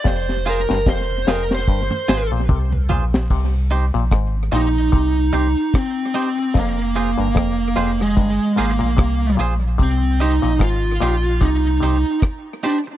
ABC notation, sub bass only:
X:1
M:4/4
L:1/16
Q:"Swing 16ths" 1/4=74
K:Cm
V:1 name="Sub bass" clef=bass
F,,,3 G,,, F,,,2 F,,,2 G,,, z A,,, B,,, C,,2 B,,,2 | C,,3 B,,, A,,,2 B,,,2 C,,2 C,, z4 z | F,,,3 G,,, F,,,2 F,,,2 G,,, z A,,, B,,, C,,2 B,,,2 | C,,3 B,,, A,,,2 B,,,2 C,,2 C,, z4 z |]